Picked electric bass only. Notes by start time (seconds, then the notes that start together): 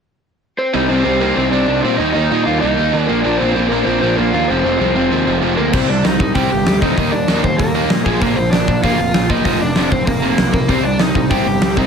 0.75 C2
0.90 C2
1.05 C2
1.37 C2
1.52 C2
1.68 C2
1.84 A#2
1.99 D#2
2.15 D#2
2.31 A#2
2.47 D#2
2.63 C2
2.78 D#2
2.94 D#2
3.10 A#1
3.25 A#1
3.41 A#1
3.56 A#1
3.87 A#1
4.03 A#1
4.18 A#1
4.33 D#2
4.49 F1
4.64 F1
4.80 C2
4.95 F1
5.12 D#2
5.27 F1
5.42 F1
5.59 D2
5.73 C2
5.89 C2
6.05 C2
6.20 C2
6.35 C2
6.52 G1
6.67 D2
6.97 D#2
7.13 D#2
7.29 D#2
7.44 D#2
7.60 D#2
7.91 A#2
8.06 A#1
8.22 A#1
8.37 A#1
8.52 A#1
8.68 A#1
8.84 A#1
8.98 F1
9.14 A#1
9.45 F1
9.61 F1
9.76 F1
9.92 F1
10.08 F1
10.38 B1
10.69 C2
10.84 C2
11.00 C2
11.15 C2
11.31 C2
11.47 G1
11.62 C2